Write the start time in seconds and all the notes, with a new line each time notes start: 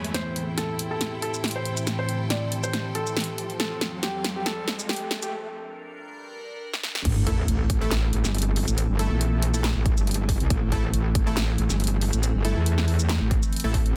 Already playing: E4 B4 G#5 B5, riser
0.04 closed hi-hat
0.14 A2 E3 C4 G4 C5, snare, closed hi-hat, riser
0.24 G5
0.33 A4, closed hi-hat
0.52 C6
0.58 A4, snare, closed hi-hat
0.79 closed hi-hat
0.91 A4
1.01 snare, closed hi-hat
1.22 A4, closed hi-hat
1.34 shaker
1.44 snare, closed hi-hat
1.48 closed hi-hat
1.51 closed hi-hat
1.56 C5
1.65 closed hi-hat
1.77 closed hi-hat, shaker
1.87 snare, closed hi-hat, shaker
1.99 C5
2.09 closed hi-hat
2.30 D5, snare, closed hi-hat
2.52 closed hi-hat
2.63 C5, shaker
2.73 snare, closed hi-hat
2.95 A4, closed hi-hat
3.07 shaker
3.17 snare, closed hi-hat
3.20 closed hi-hat
3.24 closed hi-hat
3.38 closed hi-hat
3.50 closed hi-hat
3.60 F2 F3 C4 A4, snare, closed hi-hat
3.72 F5
3.81 snare, closed hi-hat
4.03 G4, snare, closed hi-hat
4.24 snare, closed hi-hat
4.36 G4
4.46 A4, snare, closed hi-hat
4.68 snare, closed hi-hat
4.79 shaker
4.89 G4, snare, closed hi-hat
4.93 closed hi-hat
4.96 closed hi-hat
5.11 snare, closed hi-hat
5.22 G4, closed hi-hat, shaker
5.32 G2 G3 D4 A#4
6.74 snare
6.83 snare
6.95 snare
7.05 A1 E3 A3 C4, kick, closed hi-hat, crash, sub drop
7.27 A3 E4 A4, kick, closed hi-hat
7.48 A1, closed hi-hat
7.70 kick, closed hi-hat
7.81 A3 E4 A4
7.91 snare, clap, closed hi-hat
8.13 A1, closed hi-hat
8.25 G1, snare, shaker
8.35 closed hi-hat
8.38 closed hi-hat
8.42 closed hi-hat
8.56 open hi-hat
8.68 A1, closed hi-hat, shaker
8.78 closed hi-hat, shaker
8.89 G1
8.99 A3 E4 A4, closed hi-hat
9.11 A#1
9.21 closed hi-hat
9.42 closed hi-hat
9.54 A3 E4 A4, shaker
9.64 snare, clap, closed hi-hat
9.76 A1
9.86 kick, closed hi-hat
9.97 G1, shaker
10.07 closed hi-hat
10.11 closed hi-hat
10.14 closed hi-hat
10.29 kick, open hi-hat
10.40 C2, closed hi-hat
10.50 A1, kick, closed hi-hat
10.72 A3 E4 A4, kick, closed hi-hat
10.94 A1, closed hi-hat
11.15 kick, closed hi-hat
11.27 A3 E4 A4
11.37 snare, clap, closed hi-hat
11.58 A1, closed hi-hat
11.70 G1, snare, shaker
11.80 closed hi-hat
11.84 closed hi-hat
11.87 closed hi-hat
12.01 open hi-hat
12.13 A1, closed hi-hat, shaker
12.23 closed hi-hat, shaker
12.35 G1
12.45 A3 E4 A4, closed hi-hat
12.56 E2
12.66 closed hi-hat
12.78 snare
12.88 open hi-hat
12.99 shaker
13.09 snare, clap, closed hi-hat
13.21 A1
13.31 kick, closed hi-hat
13.43 shaker
13.53 closed hi-hat
13.56 closed hi-hat
13.60 closed hi-hat
13.64 A1 A3 E4 A4
13.74 kick, open hi-hat
13.86 closed hi-hat